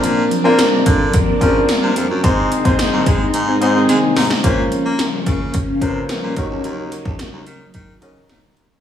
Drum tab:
HH |x-x-x-x-x-x-x-x-|x-xxx-x-x-x-x-o-|x-x-x-x-x-x-x-x-|x-x-x-x-x-x-x-x-|
TB |----x-------x---|----x-----------|----------------|----------------|
SD |----o-------o---|----o-------o-oo|----o-------o---|----o-------o---|
BD |------o-o-o-----|o--o--o---------|o-----o-o-o---o-|---o----o-------|